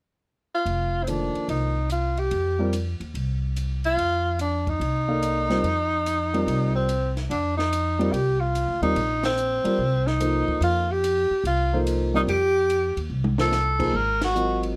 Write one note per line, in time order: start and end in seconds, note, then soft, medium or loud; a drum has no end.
0.55 1.05 F4 medium
0.66 1.31 F1 medium
0.66 ride soft
1.03 1.10 C4 medium
1.03 hi-hat pedal soft
1.03 ride medium
1.07 1.71 D#3 soft
1.07 1.71 F3 soft
1.07 1.71 A#3 soft
1.07 1.49 D4 medium
1.07 1.71 A4 soft
1.07 1.71 C5 soft
1.35 muted upright bass stroke soft
1.35 ride soft
1.48 2.28 C2 medium
1.48 1.88 D#4 medium
1.48 ride medium
1.90 2.21 F4 medium
1.90 hi-hat pedal medium
1.90 ride medium
2.17 2.74 G4 medium
2.17 ride soft
2.31 2.97 F2 medium
2.31 ride medium
2.59 2.72 G3 medium
2.59 2.72 C4 medium
2.59 2.72 F4 medium
2.59 2.72 A#4 medium
2.59 2.72 D5 medium
2.73 hi-hat pedal medium
2.73 ride medium
3.00 3.13 D#2 medium
3.00 ride soft
3.14 3.94 C2 medium
3.14 ride medium
3.56 hi-hat pedal soft
3.56 ride medium
3.84 4.36 F4 loud
3.84 ride soft
3.97 4.77 F2 medium
3.97 ride soft
4.39 4.70 D4 medium
4.39 hi-hat pedal medium
4.39 ride medium
4.67 6.75 D#4 medium
4.67 kick soft
4.67 ride soft
4.80 5.59 C2 medium
4.80 ride medium
5.08 5.47 A#3 medium
5.08 5.47 D#4 medium
5.08 5.48 A4 medium
5.08 5.48 D5 medium
5.08 5.48 F5 medium
5.23 hi-hat pedal soft
5.23 ride medium
5.50 5.62 G3 medium
5.50 5.62 C4 medium
5.50 5.63 F4 medium
5.50 5.63 A#4 medium
5.50 5.63 C5 medium
5.50 snare soft
5.50 ride soft
5.64 6.43 F2 medium
5.64 ride soft
6.06 hi-hat pedal medium
6.06 ride medium
6.34 6.86 G3 medium
6.34 6.86 C4 medium
6.34 6.86 F4 medium
6.34 6.86 A#4 medium
6.34 6.86 D5 medium
6.34 ride soft
6.47 7.26 C2 medium
6.47 ride medium
6.75 7.14 C4 medium
6.89 hi-hat pedal soft
6.89 ride medium
7.17 snare soft
7.17 ride soft
7.30 8.09 F2 medium
7.30 7.56 D4 medium
7.30 ride medium
7.57 8.14 D#4 medium
7.57 snare soft
7.73 hi-hat pedal medium
7.73 ride medium
7.99 8.12 G3 medium
7.99 8.12 C4 medium
7.99 8.12 F4 medium
7.99 8.12 A#4 medium
7.99 8.12 D5 medium
7.99 ride soft
8.12 8.64 C2 medium
8.12 8.41 G4 medium
8.12 ride medium
8.40 8.82 F4 medium
8.55 hi-hat pedal soft
8.55 ride medium
8.68 8.81 D2 medium
8.81 8.95 D#2 medium
8.81 8.95 G3 medium
8.81 8.95 C4 medium
8.81 9.21 D#4 medium
8.81 8.95 F4 medium
8.81 8.95 A#4 medium
8.81 8.95 D5 medium
8.81 ride soft
8.95 9.61 A#1 medium
8.95 ride medium
9.24 10.09 C4 medium
9.24 snare medium
9.24 ride medium
9.37 hi-hat pedal soft
9.64 9.77 G3 medium
9.64 9.77 C4 medium
9.64 9.77 F4 medium
9.64 9.77 A#4 medium
9.64 9.77 D5 medium
9.64 muted upright bass stroke soft
9.64 ride medium
9.78 10.44 C2 medium
10.07 10.62 D#4 medium
10.07 snare soft
10.20 10.84 F3 medium
10.20 10.84 A#3 medium
10.20 10.84 D#4 medium
10.20 10.84 A4 medium
10.20 10.84 C5 medium
10.20 hi-hat pedal medium
10.20 ride medium
10.48 kick soft
10.61 11.27 F2 medium
10.61 10.93 F4 medium
10.61 ride medium
10.91 11.46 G4 loud
11.04 hi-hat pedal medium
11.04 ride medium
11.31 muted upright bass stroke soft
11.44 12.23 C2 medium
11.44 11.81 F4 medium
11.44 ride medium
11.73 12.12 F3 medium
11.73 12.12 A#3 medium
11.73 12.12 D#4 medium
11.73 12.12 A4 medium
11.73 12.12 C5 medium
11.87 hi-hat pedal medium
11.87 ride medium
12.14 12.26 G3 medium
12.14 12.26 C4 medium
12.14 12.22 D#4 medium
12.14 12.26 F4 medium
12.14 12.26 A#4 medium
12.14 12.27 D5 medium
12.27 12.93 F2 medium
12.27 13.07 G4 loud
12.27 ride medium
12.70 hi-hat pedal medium
12.70 ride medium
12.97 13.09 D#2 medium
12.97 ride soft
13.10 13.89 C2 medium
13.24 high tom medium
13.38 13.50 F3 medium
13.38 13.51 A#3 medium
13.38 13.51 D#4 medium
13.38 13.51 A4 medium
13.38 13.98 A4 medium
13.38 13.51 C5 medium
13.38 snare medium
13.52 snare medium
13.52 hi-hat pedal soft
13.79 13.92 F3 medium
13.79 13.92 A#3 medium
13.79 13.92 D#4 medium
13.79 13.92 G#4 medium
13.79 13.92 C5 medium
13.79 kick medium
13.79 crash medium
13.94 14.72 G#1 medium
13.94 14.23 A#4 loud
14.21 14.61 F#4 medium
14.21 snare medium
14.21 ride medium
14.35 14.76 F#3 medium
14.35 14.76 C4 soft
14.35 14.76 F4 soft
14.35 14.76 A#4 soft
14.35 14.76 D#5 medium
14.35 hi-hat pedal medium
14.63 ride soft